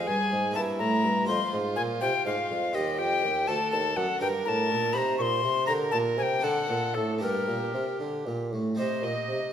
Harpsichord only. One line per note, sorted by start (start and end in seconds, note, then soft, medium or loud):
0.00 0.52 F4 medium
0.00 0.53 C5 soft
0.08 0.29 G2 medium
0.32 0.53 G#2 medium
0.51 0.77 A#3 soft
0.51 1.25 E4 soft
0.51 1.25 E5 soft
0.56 0.77 G2 medium
0.79 1.01 A2 medium
1.03 1.26 G2 medium
1.25 1.74 G#3 medium
1.25 2.69 F4 medium
1.25 2.70 C5 medium
1.29 1.51 F2 medium
1.53 1.75 G#2 medium
1.78 2.00 A#2 medium
2.02 2.24 C3 medium
2.26 2.48 G#2 medium
2.51 2.73 F2 medium
2.73 2.98 D#2 medium
2.73 3.45 G4 medium
2.73 3.46 C5 medium
3.00 3.22 F2 medium
3.25 3.46 D#2 medium
3.46 3.70 D2 medium
3.46 4.18 D4 medium
3.46 4.19 A4 soft
3.73 3.94 D#2 medium
3.97 4.19 F#2 medium
4.19 4.44 G2 medium
4.19 4.91 D4 medium
4.19 4.92 A#4 medium
4.47 4.69 A2 medium
4.71 4.93 A#2 medium
4.91 5.17 C3 medium
4.91 5.65 D#4 medium
4.91 5.65 G4 medium
5.18 5.41 A#2 medium
5.43 5.66 C3 medium
5.65 5.91 D3 medium
5.65 6.39 D4 medium
5.65 6.41 G4 medium
5.93 6.16 A#2 medium
6.18 6.41 C3 medium
6.39 7.17 C4 medium
6.39 7.18 D4 soft
6.39 7.19 A4 soft
6.44 6.67 D3 medium
6.69 6.93 A#2 medium
6.96 7.20 A2 medium
7.18 7.71 A#3 soft
7.18 7.71 D4 medium
7.18 8.74 G4 medium
7.23 7.46 G2 medium
7.49 7.72 A#2 medium
7.74 7.97 C3 medium
8.00 8.23 D3 medium
8.27 8.50 A#2 medium
8.53 8.76 A2 soft
8.75 9.50 C4 soft
8.75 9.51 D#4 soft
8.75 9.52 G4 soft
8.79 9.02 C3 soft
9.04 9.27 A#2 soft
9.30 9.52 C3 soft